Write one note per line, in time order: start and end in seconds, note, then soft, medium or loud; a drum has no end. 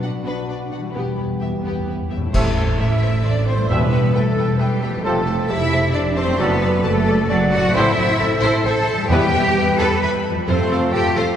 0.00 0.88 B2 soft
0.00 0.10 B2 soft
0.00 0.90 F#3 soft
0.00 0.91 D4 medium
0.00 0.92 D4 soft
0.00 0.12 D4 soft
0.00 0.91 F#4 medium
0.00 0.10 F#4 soft
0.00 0.89 B4 soft
0.00 0.11 F#5 soft
0.23 0.32 B2 medium
0.23 0.46 B3 soft
0.23 0.46 D4 soft
0.23 0.47 B4 medium
0.46 0.56 B2 soft
0.46 0.54 D4 soft
0.46 0.56 D4 soft
0.46 0.57 D5 soft
0.71 0.79 B2 soft
0.71 0.79 D4 soft
0.71 0.80 F#4 soft
0.71 0.80 F#5 soft
0.77 2.27 E3 soft
0.81 2.29 G3 soft
0.86 2.24 E4 soft
0.91 1.02 E2 soft
0.91 1.15 B3 soft
0.91 2.07 G4 soft
0.91 2.34 B4 soft
0.95 1.17 E1 soft
0.95 1.02 E2 soft
0.95 2.07 B3 soft
0.95 1.17 G4 soft
1.04 1.10 E2 soft
1.11 1.18 E2 soft
1.16 1.25 E2 soft
1.16 1.25 B3 soft
1.16 1.24 E4 soft
1.16 1.25 B4 soft
1.26 1.33 E2 soft
1.34 1.40 E2 soft
1.40 1.47 E2 soft
1.40 1.49 E2 soft
1.40 1.48 B3 soft
1.40 1.48 G4 soft
1.40 1.50 E5 soft
1.49 1.55 E2 soft
1.56 1.62 E2 soft
1.63 1.70 E2 soft
1.63 1.72 E2 soft
1.63 1.85 B3 soft
1.63 1.87 B3 soft
1.63 1.86 G4 soft
1.72 1.78 E2 soft
1.79 1.85 E2 soft
1.86 1.93 E2 soft
1.86 1.95 E2 soft
1.86 1.95 B3 soft
1.86 1.96 E4 soft
1.86 1.96 B4 soft
1.94 2.00 E2 soft
2.02 2.09 E2 soft
2.10 2.16 E2 soft
2.10 2.19 E2 soft
2.10 2.18 B3 soft
2.10 2.18 G4 soft
2.10 2.19 E5 soft
2.16 2.25 E2 medium
2.16 3.63 A2 medium
2.21 3.66 A3 soft
2.25 2.33 E2 medium
2.25 3.60 E4 medium
2.30 2.49 A3 medium
2.30 2.50 A3 medium
2.30 2.50 E4 medium
2.30 2.80 A4 medium
2.30 3.70 C5 soft
2.30 2.41 C5 medium
2.30 2.50 E5 medium
2.34 2.74 A1 medium
2.34 2.50 C3 medium
2.34 2.77 A3 medium
2.34 2.76 A4 medium
2.34 2.42 E5 medium
2.34 concert bass drum medium
2.34 crash medium
2.56 2.64 C5 medium
2.56 2.65 E5 medium
2.77 3.20 A1 medium
2.77 3.25 E4 medium
2.77 3.66 A4 medium
2.77 2.86 C5 medium
2.77 3.24 E5 medium
2.77 3.25 E5 medium
2.77 2.89 E5 medium
3.02 3.10 C5 medium
3.02 3.11 E5 medium
3.23 3.64 A1 medium
3.23 3.47 D4 medium
3.23 3.33 C5 medium
3.23 3.47 D5 medium
3.23 3.48 D5 medium
3.23 3.33 E5 medium
3.46 3.55 C4 medium
3.46 3.54 C5 medium
3.46 3.70 C5 medium
3.46 3.69 C5 medium
3.46 3.57 E5 soft
3.52 4.98 E2 medium
3.52 5.00 G3 soft
3.61 5.03 E4 soft
3.61 5.05 E5 medium
3.69 4.09 E1 medium
3.69 4.34 E2 medium
3.69 3.86 B2 medium
3.69 3.86 E3 medium
3.69 3.85 G3 medium
3.69 4.14 B3 medium
3.69 3.85 E4 medium
3.69 4.13 G4 medium
3.69 3.77 B4 medium
3.69 4.14 B4 medium
3.69 4.16 B4 medium
3.69 3.77 E5 medium
3.69 3.85 E5 medium
3.69 3.79 G5 medium
3.92 4.00 B4 medium
3.92 4.01 E5 medium
3.92 4.01 G5 medium
4.13 4.55 E1 medium
4.13 4.60 A3 medium
4.13 4.57 A4 medium
4.13 4.60 A4 medium
4.13 4.61 A4 medium
4.13 4.23 B4 medium
4.13 4.24 E5 medium
4.13 4.23 G5 medium
4.38 4.46 B4 medium
4.38 4.46 E5 medium
4.38 4.47 G5 medium
4.57 5.00 E1 medium
4.57 5.04 G3 medium
4.57 5.05 G4 medium
4.57 5.04 G4 medium
4.57 5.05 B4 medium
4.57 4.68 B4 medium
4.57 4.67 E5 medium
4.57 4.69 G5 medium
4.82 4.90 B4 medium
4.82 4.90 E5 medium
4.82 4.92 G5 medium
4.87 6.33 F2 medium
4.91 6.26 A3 medium
4.96 6.30 A4 medium
5.00 5.44 F1 medium
5.00 5.49 A3 medium
5.00 5.20 A3 medium
5.00 5.20 C4 medium
5.00 5.48 A4 medium
5.00 5.49 A4 medium
5.00 6.40 C5 medium
5.00 5.12 C5 medium
5.04 5.21 C3 medium
5.04 5.21 F3 medium
5.04 5.12 A4 medium
5.04 5.51 A4 medium
5.04 5.21 A4 medium
5.04 5.13 A5 medium
5.27 5.37 A4 medium
5.27 5.37 C5 medium
5.27 5.35 A5 medium
5.48 5.90 F1 medium
5.48 5.94 E4 loud
5.48 6.37 G4 medium
5.48 5.59 A4 medium
5.48 5.59 C5 medium
5.48 5.93 E5 loud
5.48 5.97 E5 loud
5.48 5.58 A5 medium
5.72 5.81 A4 medium
5.72 5.81 C5 medium
5.72 5.80 A5 medium
5.93 6.35 F1 loud
5.93 6.17 D4 medium
5.93 6.02 A4 medium
5.93 6.02 C5 medium
5.93 6.01 D5 medium
5.93 6.19 D5 medium
5.93 6.02 A5 medium
6.16 6.40 C4 loud
6.16 6.25 A4 medium
6.16 6.39 C5 medium
6.16 6.25 C5 medium
6.16 6.40 C5 medium
6.16 6.24 A5 medium
6.23 7.68 F#2 medium
6.27 9.06 A3 medium
6.32 7.65 A4 medium
6.37 6.79 F#1 loud
6.37 6.56 A2 medium
6.37 6.56 F#3 medium
6.37 6.56 A3 medium
6.37 6.84 B3 loud
6.37 6.56 D4 medium
6.37 6.83 F#4 medium
6.37 6.47 A4 medium
6.37 6.56 A4 medium
6.37 6.85 B4 medium
6.37 7.75 D5 medium
6.37 6.47 D5 medium
6.37 6.48 A5 medium
6.41 6.84 B4 medium
6.62 6.72 A4 medium
6.62 6.73 D5 medium
6.62 6.70 A5 medium
6.84 7.24 F#1 medium
6.84 7.29 A3 loud
6.84 7.28 A4 medium
6.84 7.30 A4 loud
6.84 6.94 A4 medium
6.84 7.33 A4 loud
6.84 6.94 D5 medium
6.84 6.92 A5 medium
7.06 7.17 A4 medium
7.06 7.16 D5 medium
7.06 7.14 A5 medium
7.28 7.70 F#1 loud
7.28 7.52 F#3 loud
7.28 7.51 F#4 medium
7.28 7.40 A4 medium
7.28 7.73 D5 loud
7.28 7.40 D5 medium
7.28 7.37 A5 medium
7.32 7.53 F#4 loud
7.51 7.74 F#4 loud
7.51 7.62 A4 medium
7.51 7.74 F#5 loud
7.51 7.59 A5 medium
7.55 9.03 A2 medium
7.55 7.63 D5 medium
7.55 7.62 F#5 medium
7.61 9.05 C4 medium
7.66 9.08 A4 medium
7.66 9.10 C5 medium
7.73 7.83 A1 loud
7.73 7.89 A2 medium
7.73 7.90 E3 medium
7.73 7.91 A3 medium
7.73 8.40 E4 loud
7.73 7.91 E4 medium
7.73 8.19 C5 medium
7.73 7.95 C5 medium
7.73 7.91 C5 medium
7.73 8.40 E5 loud
7.77 7.97 A4 loud
7.77 7.97 C5 loud
7.77 8.14 E5 medium
7.95 8.05 A1 medium
7.95 8.03 E5 medium
8.00 8.09 C5 medium
8.19 8.28 A1 medium
8.19 8.64 A4 medium
8.19 8.30 C5 medium
8.19 8.30 E5 medium
8.19 8.27 A5 medium
8.40 8.50 A1 medium
8.40 8.64 E4 loud
8.40 8.64 A4 medium
8.40 8.63 C5 loud
8.40 8.64 C5 loud
8.40 8.64 E5 medium
8.40 8.67 E5 medium
8.61 8.73 A1 medium
8.61 9.09 A4 loud
8.61 9.08 A5 loud
8.65 9.12 C5 medium
8.65 8.75 C5 medium
8.65 8.74 E5 medium
8.65 9.10 A5 medium
8.92 10.39 E2 medium
8.97 10.42 G3 medium
9.01 10.44 G4 medium
9.05 9.17 E2 loud
9.05 9.74 E2 loud
9.05 9.25 B2 medium
9.05 9.25 E3 medium
9.05 9.77 G4 loud
9.05 10.46 B4 medium
9.10 9.26 G3 medium
9.10 9.27 E4 medium
9.10 9.32 G4 medium
9.10 9.26 B4 medium
9.10 9.44 B4 medium
9.10 9.32 B4 medium
9.10 9.77 G5 loud
9.10 9.80 G5 loud
9.32 9.40 E2 medium
9.32 9.43 B4 medium
9.32 9.41 E5 medium
9.56 9.64 E2 medium
9.56 10.19 B4 loud
9.56 9.66 B4 medium
9.56 9.66 E5 medium
9.56 9.66 G5 medium
9.77 9.87 E2 medium
9.77 10.01 G4 medium
9.77 10.00 A4 loud
9.77 10.00 B4 medium
9.77 10.00 B4 loud
9.77 10.04 A5 loud
9.77 9.87 A5 medium
10.00 10.11 E2 medium
10.00 10.10 B4 loud
10.00 10.12 B4 medium
10.00 10.10 E5 medium
10.00 10.23 B5 medium
10.00 10.25 B5 medium
10.30 11.37 F2 medium
10.35 11.37 A3 medium
10.35 11.37 F4 medium
10.43 11.34 C3 medium
10.43 11.34 A3 medium
10.43 11.37 A4 medium
10.43 10.68 C5 medium
10.48 10.56 F2 medium
10.48 11.36 A3 medium
10.48 10.90 C4 loud
10.48 10.68 F4 medium
10.48 11.36 F4 medium
10.48 11.34 A4 medium
10.48 11.37 A4 medium
10.48 10.69 A4 medium
10.48 10.94 C5 medium
10.48 10.90 C5 loud
10.70 10.78 F2 medium
10.70 10.79 A4 medium
10.70 10.80 F5 medium
10.92 11.01 F2 medium
10.92 11.15 G4 loud
10.92 11.02 A4 medium
10.92 11.02 C5 medium
10.92 11.15 G5 medium
10.92 11.02 A5 medium
11.15 11.24 F2 medium
11.15 11.37 F4 medium
11.15 11.36 A4 medium
11.15 11.37 C5 medium
11.15 11.37 F5 medium